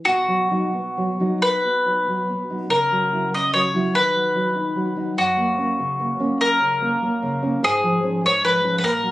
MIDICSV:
0, 0, Header, 1, 3, 480
1, 0, Start_track
1, 0, Key_signature, 5, "major"
1, 0, Tempo, 892857
1, 35, Time_signature, 6, 3, 24, 8
1, 996, Tempo, 841515
1, 1476, Tempo, 824176
1, 3876, Tempo, 806452
1, 5244, End_track
2, 0, Start_track
2, 0, Title_t, "Mandolin"
2, 0, Program_c, 0, 25
2, 28, Note_on_c, 0, 66, 58
2, 738, Note_off_c, 0, 66, 0
2, 764, Note_on_c, 0, 71, 64
2, 1454, Note_off_c, 0, 71, 0
2, 1481, Note_on_c, 0, 70, 61
2, 1821, Note_off_c, 0, 70, 0
2, 1855, Note_on_c, 0, 75, 59
2, 1960, Note_off_c, 0, 75, 0
2, 1966, Note_on_c, 0, 73, 58
2, 2186, Note_off_c, 0, 73, 0
2, 2208, Note_on_c, 0, 71, 70
2, 2897, Note_off_c, 0, 71, 0
2, 2925, Note_on_c, 0, 66, 55
2, 3617, Note_off_c, 0, 66, 0
2, 3640, Note_on_c, 0, 70, 68
2, 4340, Note_off_c, 0, 70, 0
2, 4369, Note_on_c, 0, 68, 68
2, 4702, Note_off_c, 0, 68, 0
2, 4735, Note_on_c, 0, 73, 73
2, 4841, Note_off_c, 0, 73, 0
2, 4847, Note_on_c, 0, 71, 73
2, 5029, Note_off_c, 0, 71, 0
2, 5047, Note_on_c, 0, 71, 60
2, 5078, Note_off_c, 0, 71, 0
2, 5080, Note_on_c, 0, 70, 73
2, 5244, Note_off_c, 0, 70, 0
2, 5244, End_track
3, 0, Start_track
3, 0, Title_t, "Nylon-string guitar"
3, 0, Program_c, 1, 24
3, 37, Note_on_c, 1, 47, 54
3, 149, Note_on_c, 1, 54, 47
3, 268, Note_off_c, 1, 54, 0
3, 274, Note_on_c, 1, 54, 39
3, 275, Note_on_c, 1, 63, 46
3, 383, Note_off_c, 1, 54, 0
3, 383, Note_off_c, 1, 63, 0
3, 395, Note_on_c, 1, 59, 36
3, 522, Note_on_c, 1, 54, 43
3, 594, Note_off_c, 1, 59, 0
3, 639, Note_off_c, 1, 54, 0
3, 645, Note_on_c, 1, 54, 38
3, 648, Note_on_c, 1, 63, 42
3, 861, Note_off_c, 1, 54, 0
3, 862, Note_off_c, 1, 63, 0
3, 886, Note_on_c, 1, 59, 39
3, 996, Note_on_c, 1, 54, 34
3, 998, Note_on_c, 1, 63, 43
3, 1071, Note_off_c, 1, 59, 0
3, 1104, Note_off_c, 1, 54, 0
3, 1105, Note_off_c, 1, 63, 0
3, 1123, Note_on_c, 1, 54, 34
3, 1245, Note_on_c, 1, 59, 41
3, 1311, Note_off_c, 1, 54, 0
3, 1365, Note_on_c, 1, 54, 38
3, 1366, Note_on_c, 1, 63, 43
3, 1433, Note_off_c, 1, 59, 0
3, 1455, Note_off_c, 1, 47, 0
3, 1469, Note_off_c, 1, 63, 0
3, 1470, Note_off_c, 1, 54, 0
3, 1473, Note_on_c, 1, 49, 55
3, 1603, Note_on_c, 1, 54, 44
3, 1721, Note_off_c, 1, 54, 0
3, 1727, Note_on_c, 1, 54, 37
3, 1729, Note_on_c, 1, 64, 45
3, 1834, Note_off_c, 1, 54, 0
3, 1834, Note_off_c, 1, 64, 0
3, 1846, Note_on_c, 1, 61, 36
3, 1967, Note_on_c, 1, 54, 39
3, 2035, Note_off_c, 1, 61, 0
3, 2079, Note_off_c, 1, 54, 0
3, 2086, Note_on_c, 1, 54, 45
3, 2090, Note_on_c, 1, 64, 44
3, 2177, Note_off_c, 1, 49, 0
3, 2191, Note_off_c, 1, 54, 0
3, 2193, Note_off_c, 1, 64, 0
3, 2199, Note_on_c, 1, 51, 54
3, 2319, Note_on_c, 1, 54, 39
3, 2433, Note_off_c, 1, 54, 0
3, 2440, Note_on_c, 1, 54, 37
3, 2443, Note_on_c, 1, 63, 42
3, 2548, Note_off_c, 1, 54, 0
3, 2548, Note_off_c, 1, 63, 0
3, 2562, Note_on_c, 1, 63, 43
3, 2675, Note_on_c, 1, 54, 47
3, 2751, Note_off_c, 1, 63, 0
3, 2789, Note_off_c, 1, 54, 0
3, 2796, Note_on_c, 1, 54, 43
3, 2800, Note_on_c, 1, 63, 46
3, 2894, Note_off_c, 1, 51, 0
3, 2904, Note_off_c, 1, 54, 0
3, 2906, Note_off_c, 1, 63, 0
3, 2918, Note_on_c, 1, 42, 58
3, 3034, Note_on_c, 1, 58, 52
3, 3147, Note_off_c, 1, 58, 0
3, 3154, Note_on_c, 1, 58, 46
3, 3157, Note_on_c, 1, 61, 45
3, 3262, Note_off_c, 1, 58, 0
3, 3263, Note_off_c, 1, 61, 0
3, 3279, Note_on_c, 1, 49, 43
3, 3399, Note_on_c, 1, 58, 47
3, 3470, Note_off_c, 1, 49, 0
3, 3506, Note_off_c, 1, 58, 0
3, 3513, Note_on_c, 1, 58, 43
3, 3517, Note_on_c, 1, 61, 52
3, 3732, Note_off_c, 1, 58, 0
3, 3734, Note_off_c, 1, 61, 0
3, 3756, Note_on_c, 1, 49, 48
3, 3875, Note_on_c, 1, 58, 41
3, 3878, Note_on_c, 1, 61, 42
3, 3950, Note_off_c, 1, 49, 0
3, 3986, Note_off_c, 1, 58, 0
3, 3987, Note_off_c, 1, 61, 0
3, 4000, Note_on_c, 1, 58, 49
3, 4119, Note_on_c, 1, 49, 52
3, 4194, Note_off_c, 1, 58, 0
3, 4238, Note_on_c, 1, 58, 41
3, 4240, Note_on_c, 1, 61, 50
3, 4313, Note_off_c, 1, 49, 0
3, 4339, Note_off_c, 1, 42, 0
3, 4348, Note_off_c, 1, 58, 0
3, 4349, Note_off_c, 1, 61, 0
3, 4360, Note_on_c, 1, 44, 66
3, 4480, Note_on_c, 1, 53, 56
3, 4591, Note_off_c, 1, 53, 0
3, 4598, Note_on_c, 1, 53, 52
3, 4601, Note_on_c, 1, 61, 50
3, 4708, Note_off_c, 1, 53, 0
3, 4710, Note_off_c, 1, 61, 0
3, 4722, Note_on_c, 1, 56, 47
3, 4840, Note_on_c, 1, 53, 49
3, 4914, Note_off_c, 1, 56, 0
3, 4952, Note_off_c, 1, 53, 0
3, 4958, Note_on_c, 1, 61, 52
3, 4959, Note_on_c, 1, 53, 47
3, 5057, Note_off_c, 1, 44, 0
3, 5066, Note_off_c, 1, 53, 0
3, 5066, Note_off_c, 1, 61, 0
3, 5072, Note_on_c, 1, 46, 56
3, 5192, Note_on_c, 1, 54, 49
3, 5244, Note_off_c, 1, 46, 0
3, 5244, Note_off_c, 1, 54, 0
3, 5244, End_track
0, 0, End_of_file